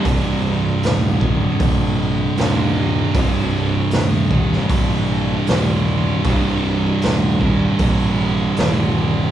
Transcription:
<<
  \new Staff \with { instrumentName = "Distorted electric guitar" } { \clef bass \time 4/4 \key c \minor \tempo 4 = 78 <c, g, c>1 | <c, g, c>1 | <c, g, c>1 | }
  \new Staff \with { instrumentName = "Distorted electric guitar" } { \clef bass \time 4/4 \key c \minor <c, g, c>4. <c, g, c>4. <c, g, c>4 | <c, g, c>4. <c, g, c>4. <c, g, c>4 | <c, g, c>4. <c, g, c>4. <c, g, c>4 | }
  \new Staff \with { instrumentName = "Fingered electric bass" } { \clef bass \time 4/4 \key c \minor c,,4 ees,,4 bes,,4 ees,,4 | c,,4 ees,,4 bes,,4 ees,,4 | c,,4 ees,,4 bes,,4 ees,,4 | }
  \new DrumStaff \with { instrumentName = "Drums" } \drummode { \time 4/4 <hho bd>4 <hho sn>8 bd8 <hho bd>4 <hho sn>4 | <hho bd>4 <hho sn>8 bd16 sn16 <hho bd>4 <hho sn>4 | <hho bd>4 <hho sn>8 bd8 <hho bd>4 <hho sn>4 | }
>>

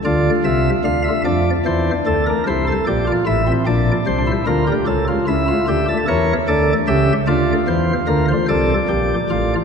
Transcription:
<<
  \new Staff \with { instrumentName = "Pipe organ" } { \time 12/8 \key d \minor \tempo 4. = 50 << { d''8 e''8 f''16 e''16 d''8 c''8 a'16 bes'16 c''8 d''8 e''8 d''8 c''8 bes'8 | a'8 e''4 cis''8 d''8 e''8 d''8 c''8 bes'16 c''16 d''4. | } \\ { f'4. d'4. e'16 a'16 g'16 f'16 e'16 c'16 d'8. e'16 f'16 g'16 | r16 f'16 e'16 f'16 g'16 a'16 bes'8 a'8 g'8 f'4. a'8 g'8 f'8 | } >> }
  \new Staff \with { instrumentName = "Pipe organ" } { \clef bass \time 12/8 \key d \minor <d, d>8 <c, c>8 <d, d>8 <f, f>8 <e, e>8 <d, d>8 <c, c>8 <bes,, bes,>8 <a,, a,>8 <bes,, bes,>8 <c, c>8 <d, d>8 | <cis, cis>8 <cis, cis>8 <d, d>8 <e, e>8 <d, d>8 <cis, cis>8 <d, d>8 <e, e>8 <d, d>8 <c, c>8 <bes,, bes,>8 <a,, a,>8 | }
>>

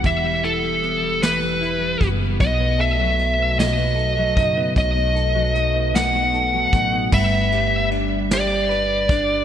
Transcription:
<<
  \new Staff \with { instrumentName = "Lead electric guitar" } { \time 6/8 \key g \major \tempo 4. = 51 e''8 a'4 b'4 r8 | dis''8 e''4 dis''4. | dis''4. fis''4. | e''4 r8 d''4. | }
  \new Staff \with { instrumentName = "Clean electric guitar" } { \time 6/8 \key g \major <e g b e'>16 g16 e'16 g16 b16 g16 e16 g16 e'16 g16 b16 g16 | b,16 b16 a'16 fis8 b16 b,16 b16 a'16 fis16 dis'16 b16 | b,16 b16 a'16 fis16 dis'16 b16 b,16 b16 a'16 fis16 dis'16 b16 | <g b'>8 g'8 d'8 g'8 b'8 d'8 | }
  \new Staff \with { instrumentName = "Steel-string acoustic guitar" } { \time 6/8 \key g \major r2. | fis16 a8 fis16 a16 dis'16 fis16 a16 dis'16 fis16 a16 dis'16 | fis16 a16 dis'16 fis16 a16 dis'16 fis16 a16 dis'16 fis16 a16 dis'16 | r2. | }
  \new Staff \with { instrumentName = "Upright bass" } { \clef bass \time 6/8 \key g \major e,,2~ e,,8 fis,,8 | b,,2~ b,,8 fis,,8 | b,,2~ b,,8 a,,8 | g,,2. | }
  \new DrumStaff \with { instrumentName = "Drums" } \drummode { \time 6/8 <hh bd>8 hh8 hh8 <hh sn>8 hh8 <hh bd>8 | <hh bd>8 hh8 hh8 <hh sn>8 hh8 <hh bd>8 | <hh bd>8 hh8 hh8 <hh sn>8 hh8 <hh bd>8 | <cymc bd>8 cymr8 cymr8 <cymr sn>8 cymr8 <bd cymr>8 | }
>>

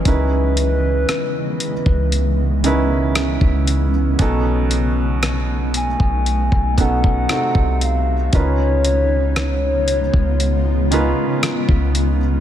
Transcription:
<<
  \new Staff \with { instrumentName = "Soft synth lead" } { \time 4/4 \key b \mixolydian \tempo 4 = 58 b'2~ b'8. r4 r16 | r4. gis''4 fis''4 eis''8 | cis''2. r4 | }
  \new Staff \with { instrumentName = "Felt piano" } { \time 4/4 \key b \mixolydian <cis cis' dis' e' b'>4. r4 <cis cis' dis' e' b'>4 r8 | <b, b cis' dis' a'>4. r4 <b, b cis' dis' a'>8 <c c' ees' ges' a'>4 | <cis cis' dis' eis' b'>4. r4 <cis cis' dis' eis' b'>4 r8 | }
  \new Staff \with { instrumentName = "Ambient pad" } { \time 4/4 \key b \mixolydian << { dis''2 cis'2 | dis'1 | eis'1 | } \\ { <cis e gis b>1 | a2. r4 | <cis gis b>1 | } >> }
  \new Staff \with { instrumentName = "808-style bass" } { \clef bass \time 4/4 \key b \mixolydian cis,4 r8. cis,4. cis,8. | b,,4.~ b,,16 b,,8 b,,8. r16 c,8. | cis,4.~ cis,16 cis,4 r8 cis,8. | }
  \new DrumStaff \with { instrumentName = "Drums" } \drummode { \time 4/4 <hh bd>8 hh8 <hh ss>8 hh16 bd16 hh8 hh8 <hh ss>16 bd16 hh8 | <hh bd>8 hh8 <hh ss>8 hh16 bd16 hh16 bd16 <hh bd>16 bd16 <hh ss>16 bd16 hh8 | <hh bd>8 hh8 <hh ss>8 hh16 bd16 hh8 hh8 <hh ss>16 bd16 hh8 | }
>>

